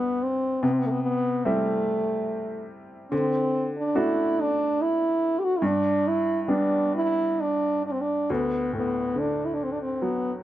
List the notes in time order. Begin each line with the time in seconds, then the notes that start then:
Already playing: D2 G3 B3 D4 B4
0.23 C4
0.62 C3 B3
0.73 C4
0.79 B3
0.86 A3
0.91 B3
1.03 B3
1.45 G3 A3 C4 E4
3.11 D3 C4
3.76 D4
3.95 A3 D4 E4 F#4
4.40 D4
4.81 E4
5.39 G4
5.44 F#4
5.57 E4
5.62 G2 D4
6.07 E4
6.43 E4
6.48 G3 B3 D4
6.95 E4
7.41 D4
7.86 D4
7.92 C4
8.01 D4
8.30 D2 B3
8.73 A2 B3
9.16 D3 D4
9.45 E4
9.54 D4
9.63 C4
9.72 D4
9.81 C4
10.02 F#3 B3